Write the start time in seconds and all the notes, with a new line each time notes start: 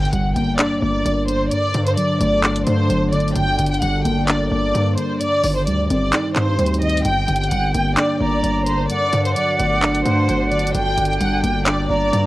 Already playing: G1 G2 D3 D4 A#4, impact
0.02 G5, closed hi-hat
0.13 G1 G3 F#5, closed hi-hat
0.36 G1 A#3 G5, closed hi-hat
0.59 D4 D5, clap, closed hi-hat
0.82 G1 A#3 D5
1.05 G1 G3, closed hi-hat
1.28 D3 C5, closed hi-hat
1.51 G2 F#4 D5, closed hi-hat
1.74 G2 D3, closed hi-hat, open hi-hat
1.87 C5, closed hi-hat
1.97 F#3 D5, closed hi-hat
2.20 G1 A3 D5, closed hi-hat
2.44 D4, clap, closed hi-hat
2.56 closed hi-hat
2.67 G2 A3 C5, closed hi-hat
2.90 G1 F#3, closed hi-hat
3.13 D3 D5, closed hi-hat
3.21 closed hi-hat
3.28 closed hi-hat
3.36 G1 G2 A#4 G5, closed hi-hat
3.59 G1 D3, closed hi-hat
3.67 closed hi-hat
3.71 G5, closed hi-hat
3.82 G1 G3 F#5, closed hi-hat
4.05 G1 A#3 G5, closed hi-hat
4.28 D4 D5, clap, closed hi-hat
4.51 G1 A#3 D5
4.74 G2 G3, closed hi-hat
4.98 D3 C5, closed hi-hat
5.21 G2 C4 D#4 G4 D5, closed hi-hat
5.43 G1 D#3, open hi-hat
5.56 C5
5.67 D2 G3 D5, closed hi-hat
5.90 G1 C4 D5, closed hi-hat
6.13 D#4, clap, closed hi-hat
6.36 G2 C4 C5, clap, closed hi-hat
6.59 D2 G3, closed hi-hat
6.67 closed hi-hat
6.74 closed hi-hat
6.82 D#3 D#5, closed hi-hat
6.90 closed hi-hat
6.98 closed hi-hat
7.05 G1 G2 D3 D4 A#4 G5, closed hi-hat
7.28 G1 D3, closed hi-hat
7.36 closed hi-hat
7.41 G5, closed hi-hat
7.51 G1 G3 F#5, closed hi-hat
7.74 G1 A#3 G5, closed hi-hat
7.97 D4 D5, clap, closed hi-hat
8.20 G1 A#3 D5 A#5
8.43 G1 G3, closed hi-hat
8.67 D3 C5, closed hi-hat
8.90 G2 F#4 D5 F#5, closed hi-hat
9.13 G2 D3, closed hi-hat, open hi-hat
9.25 C5, closed hi-hat
9.36 F#3 D5, closed hi-hat
9.59 G1 A3 D5, closed hi-hat
9.82 D4, clap, closed hi-hat
9.94 closed hi-hat
10.05 G2 A3 C5, closed hi-hat
10.28 G1 F#3, closed hi-hat
10.51 D3 D5, closed hi-hat
10.59 closed hi-hat
10.67 closed hi-hat
10.74 G1 G2 A#4 G5, closed hi-hat
10.98 G1 D3, closed hi-hat
11.05 closed hi-hat
11.10 G5, closed hi-hat
11.21 G1 G3 F#5, closed hi-hat
11.44 G1 A#3 G5, closed hi-hat
11.66 D4 D5, clap, closed hi-hat
11.90 G1 A#3 D5 A#5
12.13 G2 G3, closed hi-hat